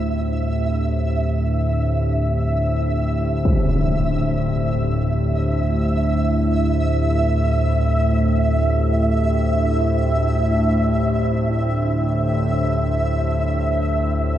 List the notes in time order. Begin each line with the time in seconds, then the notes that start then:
Already playing: D2 A2 D4 G4 C5 E5
3.44 E5, impact